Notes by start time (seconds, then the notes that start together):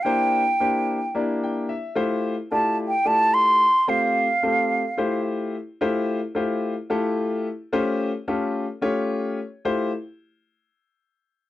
0.03 A#3 D4 E4 G4 C5 G5
0.60 A#3 D4 E4 G4 C5
1.15 A#3 D4 E4 G4 D5
1.44 G5
1.69 E5
1.95 A3 E4 F4 G4 C5
2.51 A3 E4 F4 G4 D5 A5
2.88 G5
3.05 A3 E4 F4 G4 D5 A5
3.34 C6
3.88 A3 C4 F4 G4 C5 F5
4.43 A3 C4 F4 G4 A4
4.97 A3 E4 F4 G4 C5
5.81 A3 E4 F4 G4 C5
6.35 A3 E4 F4 G4 C5
6.90 A3 E4 F4 G4 A4
7.73 A3 C#4 F4 G4 C5
8.28 A3 C#4 F4 G4 A4
8.82 A3 C#4 F4 G4 C#5
9.65 A3 E4 F4 G4 C5